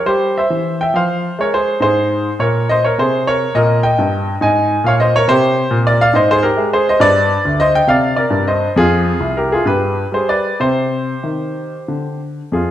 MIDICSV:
0, 0, Header, 1, 2, 480
1, 0, Start_track
1, 0, Tempo, 576369
1, 70, Time_signature, 6, 3, 24, 8
1, 7269, Tempo, 607903
1, 8229, Tempo, 639659
1, 10303, End_track
2, 0, Start_track
2, 0, Title_t, "Grand piano"
2, 0, Program_c, 0, 0
2, 48, Note_on_c, 0, 55, 63
2, 53, Note_on_c, 0, 72, 87
2, 67, Note_on_c, 0, 67, 65
2, 292, Note_off_c, 0, 67, 0
2, 302, Note_off_c, 0, 72, 0
2, 313, Note_on_c, 0, 76, 74
2, 323, Note_on_c, 0, 72, 59
2, 344, Note_off_c, 0, 55, 0
2, 418, Note_on_c, 0, 52, 47
2, 614, Note_off_c, 0, 76, 0
2, 648, Note_off_c, 0, 72, 0
2, 673, Note_on_c, 0, 79, 82
2, 689, Note_on_c, 0, 76, 63
2, 707, Note_off_c, 0, 52, 0
2, 781, Note_on_c, 0, 53, 57
2, 789, Note_off_c, 0, 76, 0
2, 789, Note_off_c, 0, 79, 0
2, 797, Note_on_c, 0, 77, 82
2, 802, Note_on_c, 0, 72, 64
2, 1072, Note_off_c, 0, 53, 0
2, 1100, Note_off_c, 0, 77, 0
2, 1131, Note_off_c, 0, 72, 0
2, 1155, Note_on_c, 0, 56, 54
2, 1172, Note_on_c, 0, 73, 78
2, 1184, Note_on_c, 0, 70, 60
2, 1280, Note_off_c, 0, 70, 0
2, 1281, Note_off_c, 0, 73, 0
2, 1283, Note_on_c, 0, 72, 85
2, 1290, Note_on_c, 0, 68, 56
2, 1442, Note_off_c, 0, 56, 0
2, 1482, Note_off_c, 0, 72, 0
2, 1501, Note_on_c, 0, 44, 62
2, 1505, Note_off_c, 0, 68, 0
2, 1518, Note_on_c, 0, 72, 88
2, 1528, Note_on_c, 0, 68, 61
2, 1895, Note_off_c, 0, 44, 0
2, 1929, Note_off_c, 0, 72, 0
2, 1973, Note_off_c, 0, 68, 0
2, 1992, Note_on_c, 0, 46, 53
2, 1998, Note_on_c, 0, 73, 81
2, 2015, Note_on_c, 0, 70, 66
2, 2232, Note_off_c, 0, 70, 0
2, 2240, Note_off_c, 0, 73, 0
2, 2244, Note_on_c, 0, 75, 95
2, 2258, Note_on_c, 0, 72, 77
2, 2361, Note_off_c, 0, 72, 0
2, 2361, Note_off_c, 0, 75, 0
2, 2369, Note_on_c, 0, 73, 76
2, 2379, Note_off_c, 0, 46, 0
2, 2380, Note_on_c, 0, 70, 70
2, 2482, Note_off_c, 0, 70, 0
2, 2484, Note_off_c, 0, 73, 0
2, 2484, Note_on_c, 0, 48, 54
2, 2493, Note_on_c, 0, 72, 83
2, 2507, Note_on_c, 0, 68, 58
2, 2716, Note_off_c, 0, 68, 0
2, 2726, Note_off_c, 0, 72, 0
2, 2727, Note_on_c, 0, 73, 93
2, 2737, Note_on_c, 0, 70, 67
2, 2863, Note_off_c, 0, 48, 0
2, 2948, Note_off_c, 0, 70, 0
2, 2953, Note_on_c, 0, 46, 66
2, 2957, Note_on_c, 0, 75, 100
2, 2959, Note_off_c, 0, 73, 0
2, 2972, Note_on_c, 0, 70, 77
2, 3184, Note_off_c, 0, 70, 0
2, 3190, Note_off_c, 0, 75, 0
2, 3192, Note_on_c, 0, 79, 94
2, 3202, Note_on_c, 0, 75, 76
2, 3238, Note_off_c, 0, 46, 0
2, 3319, Note_on_c, 0, 43, 60
2, 3605, Note_off_c, 0, 79, 0
2, 3609, Note_off_c, 0, 43, 0
2, 3649, Note_off_c, 0, 75, 0
2, 3671, Note_on_c, 0, 44, 69
2, 3683, Note_on_c, 0, 80, 92
2, 3692, Note_on_c, 0, 75, 74
2, 3963, Note_off_c, 0, 44, 0
2, 3988, Note_off_c, 0, 80, 0
2, 4021, Note_off_c, 0, 75, 0
2, 4031, Note_on_c, 0, 46, 62
2, 4052, Note_on_c, 0, 77, 92
2, 4064, Note_on_c, 0, 73, 75
2, 4164, Note_off_c, 0, 73, 0
2, 4164, Note_on_c, 0, 75, 95
2, 4165, Note_off_c, 0, 77, 0
2, 4176, Note_on_c, 0, 72, 73
2, 4279, Note_off_c, 0, 72, 0
2, 4281, Note_off_c, 0, 75, 0
2, 4295, Note_on_c, 0, 73, 104
2, 4308, Note_on_c, 0, 70, 73
2, 4322, Note_off_c, 0, 46, 0
2, 4395, Note_on_c, 0, 48, 74
2, 4404, Note_on_c, 0, 72, 106
2, 4406, Note_off_c, 0, 70, 0
2, 4406, Note_off_c, 0, 73, 0
2, 4418, Note_on_c, 0, 67, 86
2, 4682, Note_off_c, 0, 48, 0
2, 4752, Note_on_c, 0, 46, 70
2, 4806, Note_off_c, 0, 72, 0
2, 4851, Note_off_c, 0, 67, 0
2, 4886, Note_on_c, 0, 74, 96
2, 4894, Note_on_c, 0, 70, 64
2, 4995, Note_off_c, 0, 70, 0
2, 4998, Note_off_c, 0, 74, 0
2, 5008, Note_on_c, 0, 77, 105
2, 5016, Note_on_c, 0, 74, 77
2, 5037, Note_off_c, 0, 46, 0
2, 5109, Note_on_c, 0, 44, 65
2, 5115, Note_off_c, 0, 74, 0
2, 5118, Note_off_c, 0, 77, 0
2, 5123, Note_on_c, 0, 75, 97
2, 5130, Note_on_c, 0, 72, 84
2, 5230, Note_off_c, 0, 72, 0
2, 5234, Note_off_c, 0, 75, 0
2, 5255, Note_on_c, 0, 72, 103
2, 5261, Note_on_c, 0, 68, 72
2, 5353, Note_on_c, 0, 70, 87
2, 5355, Note_off_c, 0, 68, 0
2, 5359, Note_off_c, 0, 72, 0
2, 5362, Note_on_c, 0, 67, 67
2, 5392, Note_off_c, 0, 44, 0
2, 5474, Note_on_c, 0, 56, 61
2, 5550, Note_off_c, 0, 70, 0
2, 5574, Note_off_c, 0, 67, 0
2, 5609, Note_on_c, 0, 72, 89
2, 5617, Note_on_c, 0, 68, 71
2, 5711, Note_off_c, 0, 68, 0
2, 5714, Note_off_c, 0, 72, 0
2, 5740, Note_on_c, 0, 75, 96
2, 5747, Note_on_c, 0, 72, 75
2, 5756, Note_off_c, 0, 56, 0
2, 5829, Note_on_c, 0, 43, 77
2, 5837, Note_off_c, 0, 72, 0
2, 5840, Note_off_c, 0, 75, 0
2, 5840, Note_on_c, 0, 74, 119
2, 5850, Note_on_c, 0, 71, 75
2, 6116, Note_off_c, 0, 43, 0
2, 6203, Note_on_c, 0, 38, 68
2, 6285, Note_off_c, 0, 71, 0
2, 6312, Note_off_c, 0, 74, 0
2, 6328, Note_on_c, 0, 75, 107
2, 6338, Note_on_c, 0, 72, 73
2, 6432, Note_off_c, 0, 72, 0
2, 6434, Note_off_c, 0, 75, 0
2, 6458, Note_on_c, 0, 79, 107
2, 6461, Note_on_c, 0, 75, 74
2, 6481, Note_off_c, 0, 38, 0
2, 6553, Note_off_c, 0, 75, 0
2, 6557, Note_on_c, 0, 48, 68
2, 6558, Note_off_c, 0, 79, 0
2, 6567, Note_on_c, 0, 77, 92
2, 6578, Note_on_c, 0, 74, 79
2, 6758, Note_off_c, 0, 77, 0
2, 6782, Note_off_c, 0, 74, 0
2, 6799, Note_on_c, 0, 74, 86
2, 6816, Note_on_c, 0, 70, 71
2, 6837, Note_off_c, 0, 48, 0
2, 6916, Note_on_c, 0, 43, 65
2, 7023, Note_off_c, 0, 70, 0
2, 7030, Note_off_c, 0, 74, 0
2, 7058, Note_on_c, 0, 75, 83
2, 7063, Note_on_c, 0, 72, 59
2, 7203, Note_off_c, 0, 43, 0
2, 7251, Note_off_c, 0, 75, 0
2, 7272, Note_off_c, 0, 72, 0
2, 7294, Note_on_c, 0, 41, 76
2, 7306, Note_on_c, 0, 68, 100
2, 7314, Note_on_c, 0, 65, 78
2, 7567, Note_off_c, 0, 41, 0
2, 7641, Note_on_c, 0, 36, 58
2, 7734, Note_off_c, 0, 65, 0
2, 7762, Note_off_c, 0, 68, 0
2, 7776, Note_on_c, 0, 70, 75
2, 7781, Note_on_c, 0, 67, 61
2, 7875, Note_off_c, 0, 67, 0
2, 7880, Note_off_c, 0, 70, 0
2, 7897, Note_on_c, 0, 68, 83
2, 7911, Note_on_c, 0, 65, 65
2, 7923, Note_off_c, 0, 36, 0
2, 8000, Note_off_c, 0, 68, 0
2, 8001, Note_off_c, 0, 65, 0
2, 8001, Note_on_c, 0, 43, 64
2, 8013, Note_on_c, 0, 71, 90
2, 8016, Note_on_c, 0, 67, 60
2, 8284, Note_off_c, 0, 43, 0
2, 8308, Note_off_c, 0, 71, 0
2, 8336, Note_off_c, 0, 67, 0
2, 8359, Note_on_c, 0, 55, 57
2, 8377, Note_on_c, 0, 72, 76
2, 8387, Note_on_c, 0, 68, 55
2, 8477, Note_off_c, 0, 68, 0
2, 8479, Note_off_c, 0, 72, 0
2, 8489, Note_on_c, 0, 74, 85
2, 8495, Note_on_c, 0, 71, 66
2, 8642, Note_off_c, 0, 55, 0
2, 8705, Note_off_c, 0, 71, 0
2, 8718, Note_off_c, 0, 74, 0
2, 8721, Note_on_c, 0, 48, 67
2, 8726, Note_on_c, 0, 72, 79
2, 8739, Note_on_c, 0, 67, 55
2, 9106, Note_off_c, 0, 48, 0
2, 9198, Note_on_c, 0, 51, 49
2, 9584, Note_off_c, 0, 51, 0
2, 9684, Note_on_c, 0, 50, 50
2, 9910, Note_off_c, 0, 67, 0
2, 9933, Note_off_c, 0, 72, 0
2, 10065, Note_off_c, 0, 50, 0
2, 10161, Note_on_c, 0, 41, 50
2, 10171, Note_on_c, 0, 68, 59
2, 10180, Note_on_c, 0, 65, 54
2, 10303, Note_off_c, 0, 41, 0
2, 10303, Note_off_c, 0, 65, 0
2, 10303, Note_off_c, 0, 68, 0
2, 10303, End_track
0, 0, End_of_file